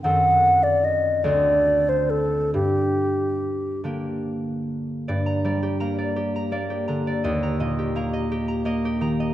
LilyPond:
<<
  \new Staff \with { instrumentName = "Flute" } { \time 6/8 \key g \minor \tempo 4. = 54 fis''8. d''16 dis''8 d''8. c''16 a'8 | g'4. r4. | r2. | r2. | }
  \new Staff \with { instrumentName = "Harp" } { \time 6/8 \key g \minor r2. | r2. | d''16 bes''16 d''16 g'16 bes''16 d''16 g'16 bes''16 d''16 g'16 bes''16 d''16 | ees''16 bes''16 ees''16 g'16 bes''16 ees''16 g'16 bes''16 ees''16 g'16 bes''16 ees''16 | }
  \new Staff \with { instrumentName = "Harp" } { \clef bass \time 6/8 \key g \minor <fis, dis c' a'>4. <d, d c' fis'>4. | g,4. <d bes g'>4. | g,8 g8 bes4 bes8 d8 | ees,8 bes,8 bes4 bes8 ees8 | }
>>